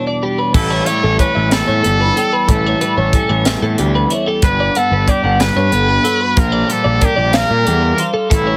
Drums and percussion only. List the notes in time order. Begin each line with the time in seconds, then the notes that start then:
0.54 kick, crash
0.86 closed hi-hat
1.19 kick, closed hi-hat
1.51 snare, closed hi-hat
1.84 closed hi-hat
2.17 closed hi-hat
2.49 kick, closed hi-hat
2.81 closed hi-hat
3.13 kick, closed hi-hat
3.45 snare, closed hi-hat
3.78 closed hi-hat
4.10 closed hi-hat
4.42 kick, closed hi-hat
4.75 closed hi-hat
5.08 kick, closed hi-hat
5.40 snare, closed hi-hat
5.72 closed hi-hat
6.05 closed hi-hat
6.37 kick, closed hi-hat
6.70 closed hi-hat
7.01 kick, closed hi-hat
7.33 snare, closed hi-hat
7.67 closed hi-hat
7.98 closed hi-hat
8.31 kick, closed hi-hat